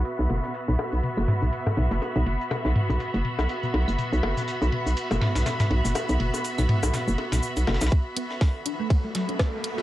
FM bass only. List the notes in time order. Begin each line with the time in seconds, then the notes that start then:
0.19 B1
0.30 F#1
0.68 B1
0.93 B1
1.17 F#1
1.42 B1
1.77 B1
1.91 F#1
2.16 B1
2.26 F#1
2.65 B1
2.90 B1
3.14 F#1
3.39 B1
3.74 B1
3.88 F#1
4.13 B1
4.23 F#1
4.62 B1
4.86 B1
5.11 F#1
5.35 B1
5.71 B1
5.85 F#1
6.09 B1
6.20 F#1
6.58 B1
6.83 B1
7.08 F#1
7.32 B1
7.57 B1
7.67 F#1
7.81 B1